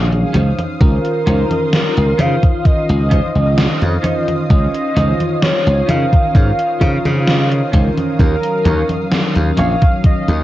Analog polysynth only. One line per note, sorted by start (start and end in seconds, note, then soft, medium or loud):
0.00 0.31 D#3 medium
0.00 0.32 F#3 medium
0.00 0.32 C#4 medium
0.00 0.33 G#4 loud
0.79 2.13 D#3 medium
0.79 2.14 C#4 medium
0.79 2.14 F4 loud
0.79 2.13 C5 medium
2.18 3.98 D#3 medium
2.18 3.99 C#4 medium
2.18 3.99 F4 loud
4.04 4.45 D#3 loud
4.04 4.45 C#4 medium
4.04 4.45 F4 loud
4.04 4.45 C5 loud
4.49 5.83 D#3 loud
4.49 5.84 C#4 medium
4.49 5.84 F4 loud
4.49 5.83 C#5 medium
5.87 8.13 D#3 medium
5.87 8.14 C#4 medium
5.87 8.15 A#4 loud
5.87 8.14 C5 medium
8.18 9.52 D#3 medium
8.18 9.52 F#3 medium
8.18 9.53 C#4 medium
8.18 9.53 F5 loud
9.57 10.44 D#3 medium
9.57 10.44 F#3 medium
9.57 10.44 C#4 medium
9.57 10.44 F5 loud